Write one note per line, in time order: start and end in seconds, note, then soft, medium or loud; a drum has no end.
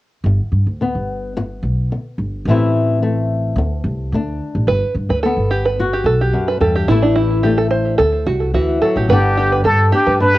0.24 0.38 G1 medium
0.24 0.76 G2 medium
0.52 0.66 G2 medium
0.66 0.93 D2 medium
0.81 1.31 D3 medium
0.81 2.44 B3 soft
0.95 1.59 G1 medium
1.37 1.87 G2 medium
1.37 muted nylon-string guitar stroke medium
1.63 1.89 B1 medium
1.92 2.42 D3 medium
2.18 2.45 G1 medium
2.45 3.53 A1 medium
2.45 2.97 A2 medium
2.45 3.01 E3 medium
2.45 3.02 A3 soft
2.50 3.56 C4 medium
2.50 3.59 E4 medium
3.02 3.52 E3 medium
3.02 4.14 A3 medium
3.56 3.82 D2 medium
3.56 4.08 D3 medium
3.84 4.10 C2 medium
4.12 4.38 D2 medium
4.12 4.63 A3 medium
4.12 4.66 D4 medium
4.55 4.66 A1 medium
4.67 4.81 G1 medium
4.67 5.19 G2 medium
4.67 4.94 B4 medium
4.95 5.09 G2 medium
5.09 5.36 D2 medium
5.09 5.22 B4 medium
5.23 5.74 D3 medium
5.23 6.87 B3 medium
5.23 5.49 A4 medium
5.37 6.02 G1 medium
5.51 5.65 G4 medium
5.66 5.92 B4 medium
5.79 6.29 G2 medium
5.79 6.86 F#4 medium
5.93 6.05 G4 medium
6.04 6.31 B1 medium
6.04 6.20 A4 medium
6.21 6.47 G4 medium
6.33 6.60 F#2 medium
6.48 6.60 B4 medium
6.61 6.87 E2 medium
6.61 6.89 G2 medium
6.61 6.75 A4 medium
6.76 6.88 G4 medium
6.88 7.95 A1 medium
6.88 7.39 A2 medium
6.88 7.43 E3 medium
6.88 7.44 A3 medium
6.88 7.03 E4 medium
6.88 8.00 E4 medium
6.88 muted nylon-string guitar stroke medium
7.03 7.15 D4 medium
7.16 7.42 E4 medium
7.43 7.94 E3 medium
7.43 7.97 A3 medium
7.43 7.58 G4 medium
7.58 7.70 A4 medium
7.71 7.97 C5 medium
7.98 8.25 D2 medium
7.98 8.50 D3 medium
7.98 8.25 A4 medium
8.27 8.53 C2 medium
8.27 8.53 F#4 medium
8.54 8.80 D2 medium
8.54 8.82 E3 medium
8.54 8.81 F#4 medium
8.82 9.10 F#3 medium
8.82 8.96 A4 medium
8.96 9.08 A1 medium
8.96 9.09 G4 medium
9.09 9.61 G1 medium
9.09 9.60 G2 medium
9.09 9.64 D3 medium
9.09 10.38 B3 medium
9.09 9.37 D4 medium
9.09 9.61 G4 medium
9.09 9.36 B4 medium
9.37 9.92 D4 medium
9.37 9.51 G4 medium
9.52 9.64 B4 medium
9.64 9.90 G2 medium
9.64 10.15 D3 medium
9.64 9.91 A4 medium
9.92 10.20 D4 medium
9.92 10.06 G4 medium
9.92 10.19 G4 medium
10.07 10.38 G2 medium
10.07 10.33 B4 medium
10.20 10.38 G2 medium
10.20 10.38 D4 medium
10.20 10.38 B4 loud
10.34 10.38 G4 medium